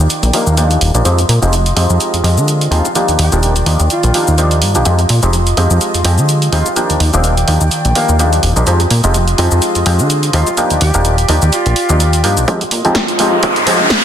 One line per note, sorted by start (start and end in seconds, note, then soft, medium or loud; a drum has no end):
0.00 1.04 D#3 medium
0.00 1.03 D5 medium
0.00 1.04 G5 medium
0.10 closed hi-hat medium
0.10 shaker soft
0.23 0.31 A#1 loud
0.23 closed hi-hat medium
0.23 shaker soft
0.33 0.54 F3 medium
0.33 0.54 A#3 medium
0.33 0.82 A#3 loud
0.33 0.54 D4 medium
0.33 0.54 D#4 medium
0.33 0.55 G4 medium
0.33 open hi-hat loud
0.47 0.78 D#2 medium
0.47 shaker medium
0.57 0.91 F3 medium
0.57 0.91 A#3 medium
0.57 0.91 D4 medium
0.57 0.91 D#4 medium
0.57 0.92 G4 medium
0.57 closed hi-hat medium
0.57 shaker medium
0.71 closed hi-hat soft
0.71 shaker soft
0.81 0.92 D#1 medium
0.81 open hi-hat loud
0.94 1.03 A#1 medium
0.94 1.04 F3 medium
0.94 1.04 A#3 medium
0.94 1.04 D4 medium
0.94 1.04 D#4 medium
0.94 1.04 G4 medium
0.94 closed hi-hat soft
0.94 shaker medium
1.05 1.25 F2 medium
1.05 1.20 F3 medium
1.05 1.20 G#3 medium
1.05 1.20 C4 medium
1.05 1.20 D#4 medium
1.05 2.94 F4 medium
1.05 1.20 G4 loud
1.05 2.94 D#5 medium
1.05 closed hi-hat medium
1.05 shaker soft
1.18 closed hi-hat soft
1.18 shaker soft
1.29 1.39 A#2 medium
1.29 open hi-hat loud
1.42 1.73 F1 medium
1.42 1.54 F3 medium
1.42 1.54 G#3 medium
1.42 1.55 C4 medium
1.42 1.55 D#4 medium
1.42 1.55 G4 loud
1.42 closed hi-hat soft
1.42 shaker medium
1.53 closed hi-hat medium
1.53 shaker soft
1.66 closed hi-hat soft
1.66 shaker soft
1.76 1.87 F2 medium
1.76 2.22 F3 medium
1.76 2.22 G#3 medium
1.76 2.22 C4 medium
1.76 2.22 D#4 medium
1.76 2.22 G4 loud
1.76 open hi-hat loud
1.90 1.98 F2 medium
1.90 shaker medium
2.00 closed hi-hat medium
2.00 shaker soft
2.14 2.22 F2 soft
2.14 closed hi-hat soft
2.14 shaker soft
2.24 2.38 F2 medium
2.24 2.69 F3 medium
2.24 2.69 G#3 medium
2.24 2.69 C4 medium
2.24 2.69 G4 medium
2.24 2.69 D#5 medium
2.24 open hi-hat loud
2.37 2.68 D3 loud
2.37 shaker medium
2.48 closed hi-hat medium
2.48 shaker medium
2.61 closed hi-hat soft
2.61 shaker soft
2.71 2.82 D#2 medium
2.71 2.86 F3 medium
2.71 2.86 G#3 medium
2.71 2.86 C4 medium
2.71 2.86 D#4 medium
2.71 2.88 F4 medium
2.71 2.87 G4 loud
2.71 open hi-hat loud
2.85 closed hi-hat soft
2.85 shaker medium
2.95 4.84 D#3 medium
2.95 3.29 F3 medium
2.95 3.29 A#3 medium
2.95 3.29 D4 medium
2.95 3.30 D#4 medium
2.95 3.30 G4 medium
2.95 4.84 D5 medium
2.95 4.84 G5 medium
2.95 closed hi-hat medium
2.95 shaker medium
3.08 3.17 D#2 soft
3.08 closed hi-hat soft
3.08 shaker soft
3.19 3.30 D#2 medium
3.19 3.36 G4 medium
3.19 open hi-hat loud
3.32 3.63 D#1 medium
3.32 3.54 F3 medium
3.32 3.54 A#3 medium
3.32 3.54 D4 medium
3.32 3.54 D#4 medium
3.32 3.54 G4 loud
3.32 closed hi-hat soft
3.32 shaker medium
3.43 closed hi-hat medium
3.43 shaker soft
3.56 closed hi-hat soft
3.56 shaker soft
3.66 3.77 D#2 medium
3.66 3.81 F3 medium
3.66 3.81 A#3 medium
3.66 3.81 D4 medium
3.66 3.82 D#4 medium
3.66 3.82 G4 medium
3.66 open hi-hat loud
3.80 3.89 D#2 medium
3.80 closed hi-hat soft
3.80 shaker medium
3.90 4.58 F4 medium
3.90 closed hi-hat medium
3.90 shaker medium
4.03 4.12 A#1 loud
4.03 closed hi-hat soft
4.03 shaker soft
4.14 4.35 F3 medium
4.14 4.35 A#3 medium
4.14 4.35 D4 medium
4.14 4.35 D#4 medium
4.14 4.36 G4 medium
4.14 open hi-hat loud
4.28 4.64 D#2 medium
4.28 shaker medium
4.38 4.72 F3 medium
4.38 4.72 A#3 medium
4.38 4.72 D4 medium
4.38 4.72 D#4 medium
4.38 4.73 G4 medium
4.38 closed hi-hat medium
4.38 shaker medium
4.51 closed hi-hat soft
4.51 shaker soft
4.62 4.77 G2 medium
4.62 open hi-hat loud
4.75 4.84 A#1 medium
4.75 4.84 F3 medium
4.75 4.84 A#3 medium
4.75 4.84 D4 medium
4.75 4.85 D#4 medium
4.75 4.85 G4 medium
4.75 closed hi-hat soft
4.75 shaker medium
4.85 5.06 F2 loud
4.85 5.00 F3 medium
4.85 5.01 G#3 medium
4.85 5.01 C4 medium
4.85 5.01 D#4 medium
4.85 6.75 F4 medium
4.85 5.01 G4 loud
4.85 6.75 D#5 medium
4.85 closed hi-hat medium
4.85 shaker medium
4.99 closed hi-hat soft
4.99 shaker soft
5.09 5.20 A#2 medium
5.09 open hi-hat loud
5.23 5.54 F1 medium
5.23 5.35 F3 medium
5.23 5.35 G#3 medium
5.23 5.35 C4 medium
5.23 5.36 D#4 medium
5.23 5.36 G4 loud
5.23 closed hi-hat soft
5.23 shaker medium
5.33 closed hi-hat medium
5.33 shaker soft
5.47 closed hi-hat soft
5.47 shaker soft
5.57 5.68 F2 medium
5.57 6.03 F3 medium
5.57 6.03 G#3 medium
5.57 6.03 C4 medium
5.57 6.03 D#4 medium
5.57 6.03 G4 loud
5.57 open hi-hat loud
5.70 5.79 F2 medium
5.70 shaker medium
5.81 closed hi-hat medium
5.81 shaker medium
5.94 6.03 F2 soft
5.94 closed hi-hat soft
5.94 shaker soft
6.05 6.19 F2 medium
6.05 6.50 F3 medium
6.05 6.50 G#3 medium
6.05 6.50 C4 medium
6.05 6.50 G4 medium
6.05 6.50 D#5 medium
6.05 open hi-hat loud
6.18 6.49 D3 loud
6.18 shaker medium
6.29 closed hi-hat medium
6.29 shaker medium
6.42 closed hi-hat soft
6.42 shaker soft
6.52 6.63 D#2 medium
6.52 6.67 F3 medium
6.52 6.67 G#3 medium
6.52 6.67 C4 medium
6.52 6.68 D#4 medium
6.52 6.69 F4 medium
6.52 6.68 G4 loud
6.52 open hi-hat loud
6.66 closed hi-hat soft
6.66 shaker medium
6.76 8.65 D#3 medium
6.76 7.10 F3 medium
6.76 7.10 A#3 medium
6.76 7.10 D4 medium
6.76 7.10 D#4 medium
6.76 7.11 G4 loud
6.76 8.65 D5 medium
6.76 8.65 G5 medium
6.76 closed hi-hat medium
6.76 shaker medium
6.90 6.98 D#2 soft
6.90 closed hi-hat medium
6.90 shaker soft
7.00 7.11 D#2 medium
7.00 open hi-hat medium
7.13 7.44 D#1 medium
7.13 7.35 F3 medium
7.13 7.35 A#3 medium
7.13 7.28 C4 medium
7.13 7.35 D4 medium
7.13 7.35 D#4 medium
7.13 7.35 G4 loud
7.13 closed hi-hat soft
7.13 shaker medium
7.24 closed hi-hat medium
7.24 shaker medium
7.37 closed hi-hat soft
7.37 shaker soft
7.48 7.59 D#2 medium
7.48 7.62 F3 medium
7.48 7.62 A#3 medium
7.48 7.63 D4 medium
7.48 7.63 D#4 medium
7.48 7.63 G4 medium
7.48 open hi-hat medium
7.61 7.70 D#2 medium
7.61 shaker medium
7.71 closed hi-hat medium
7.71 shaker medium
7.85 7.93 A#1 loud
7.85 closed hi-hat soft
7.85 shaker soft
7.95 8.16 F3 medium
7.95 8.16 A#3 medium
7.95 8.43 A#3 medium
7.95 8.16 D4 medium
7.95 8.16 D#4 medium
7.95 8.17 G4 medium
7.95 open hi-hat loud
8.09 8.40 D#2 medium
8.09 shaker medium
8.19 8.53 F3 medium
8.19 8.53 A#3 medium
8.19 8.53 D4 medium
8.19 8.53 D#4 medium
8.19 8.54 G4 loud
8.19 closed hi-hat medium
8.19 shaker medium
8.33 closed hi-hat soft
8.33 shaker soft
8.43 8.54 D#1 medium
8.43 open hi-hat loud
8.43 tambourine medium
8.56 8.65 A#1 loud
8.56 8.65 F3 medium
8.56 8.65 A#3 medium
8.56 8.65 D4 medium
8.56 8.66 D#4 medium
8.56 8.66 G4 medium
8.56 closed hi-hat soft
8.56 shaker medium
8.67 8.87 F2 medium
8.67 8.81 F3 loud
8.67 8.82 G#3 medium
8.67 8.82 C4 medium
8.67 8.82 D#4 medium
8.67 10.56 F4 medium
8.67 8.82 G4 loud
8.67 10.56 D#5 medium
8.67 closed hi-hat medium
8.67 shaker medium
8.80 closed hi-hat medium
8.80 shaker soft
8.90 9.01 A#2 medium
8.90 open hi-hat loud
9.04 9.35 F1 medium
9.04 9.16 F3 medium
9.04 9.16 G#3 medium
9.04 9.17 C4 medium
9.04 9.17 D#4 medium
9.04 9.17 G4 loud
9.04 closed hi-hat soft
9.04 shaker medium
9.14 closed hi-hat medium
9.14 shaker medium
9.28 closed hi-hat soft
9.28 shaker soft
9.38 9.49 F2 medium
9.38 9.83 F3 medium
9.38 9.84 G#3 medium
9.38 9.84 C4 medium
9.38 9.84 D#4 medium
9.38 9.84 G4 loud
9.38 open hi-hat medium
9.51 9.60 F2 medium
9.51 tambourine soft
9.51 shaker medium
9.62 closed hi-hat medium
9.62 shaker medium
9.75 9.84 F2 soft
9.75 closed hi-hat soft
9.75 shaker soft
9.86 10.01 F2 medium
9.86 10.31 F3 medium
9.86 10.31 G#3 medium
9.86 10.31 C4 medium
9.86 10.31 G4 medium
9.86 10.31 D#5 medium
9.86 open hi-hat loud
9.99 10.30 D3 medium
9.99 shaker medium
10.10 closed hi-hat medium
10.10 shaker medium
10.23 closed hi-hat soft
10.23 shaker soft
10.33 10.44 D#2 medium
10.33 10.48 F3 medium
10.33 10.48 G#3 medium
10.33 10.48 C4 medium
10.33 10.48 D#4 medium
10.33 10.50 F4 medium
10.33 10.49 G4 loud
10.33 open hi-hat loud
10.47 closed hi-hat soft
10.47 shaker medium
10.57 10.91 F3 medium
10.57 10.91 A#3 medium
10.57 10.91 D4 medium
10.57 10.92 D#4 medium
10.57 12.46 G4 medium
10.57 10.92 G4 loud
10.57 12.46 D5 medium
10.57 12.46 G5 medium
10.57 closed hi-hat medium
10.57 shaker medium
10.70 10.79 D#2 soft
10.70 closed hi-hat medium
10.70 shaker soft
10.81 10.92 D#2 medium
10.81 10.98 G4 medium
10.81 open hi-hat loud
10.94 11.26 D#1 medium
10.94 11.16 F3 medium
10.94 11.16 A#3 medium
10.94 11.16 D4 medium
10.94 11.16 D#4 medium
10.94 11.16 G4 loud
10.94 closed hi-hat soft
10.94 shaker medium
11.05 closed hi-hat medium
11.05 tambourine soft
11.05 shaker medium
11.18 closed hi-hat medium
11.18 shaker soft
11.29 11.39 D#2 medium
11.29 11.43 F3 medium
11.29 11.43 A#3 medium
11.29 11.44 D4 medium
11.29 11.44 D#4 medium
11.29 11.44 G4 medium
11.29 open hi-hat loud
11.42 11.51 D#2 medium
11.42 closed hi-hat soft
11.42 shaker medium
11.53 12.20 F4 medium
11.53 closed hi-hat medium
11.53 shaker medium
11.66 11.74 A#1 loud
11.66 closed hi-hat medium
11.66 shaker soft
11.76 open hi-hat medium
11.89 12.25 D#2 medium
11.89 12.02 F3 medium
11.89 12.02 A#3 medium
11.89 12.02 D4 medium
11.89 12.02 D#4 medium
11.89 12.02 G4 medium
11.89 closed hi-hat soft
11.89 shaker medium
12.00 closed hi-hat medium
12.00 shaker medium
12.13 closed hi-hat medium
12.13 shaker soft
12.23 12.38 G2 medium
12.23 12.45 F3 medium
12.23 12.45 A#3 medium
12.23 12.45 D4 medium
12.23 12.46 D#4 medium
12.23 12.46 G4 medium
12.23 open hi-hat loud
12.37 12.46 A#1 medium
12.37 closed hi-hat soft
12.37 shaker medium
12.48 12.67 F2 loud
12.48 12.62 F3 loud
12.48 12.63 G#3 medium
12.48 12.63 C4 medium
12.48 12.63 D#4 medium
12.48 14.04 F4 medium
12.48 12.63 G4 loud
12.48 14.04 D#5 medium
12.48 kick loud
12.48 closed hi-hat medium
12.48 riser medium
12.61 closed hi-hat medium
12.71 12.82 A#2 medium
12.71 open hi-hat loud
12.85 13.16 F1 medium
12.85 12.97 F3 loud
12.85 12.97 G#3 medium
12.85 12.97 C4 medium
12.85 12.98 D#4 medium
12.85 12.98 G4 loud
12.85 closed hi-hat soft
12.95 kick loud
12.95 snare loud
12.95 closed hi-hat medium
13.08 closed hi-hat medium
13.19 13.30 F2 medium
13.19 13.65 F3 medium
13.19 13.65 G#3 medium
13.19 13.65 C4 medium
13.19 13.65 D#4 medium
13.19 13.65 G4 medium
13.19 open hi-hat loud
13.32 13.41 F2 medium
13.43 kick loud
13.43 closed hi-hat medium
13.56 13.65 F2 soft
13.56 closed hi-hat medium
13.67 13.81 F2 medium
13.67 14.04 F3 medium
13.67 14.04 G#3 medium
13.67 14.04 C4 medium
13.67 14.04 G4 medium
13.67 14.04 D#5 medium
13.67 open hi-hat loud
13.80 14.04 D3 loud
13.90 kick loud
13.90 snare loud
13.90 closed hi-hat medium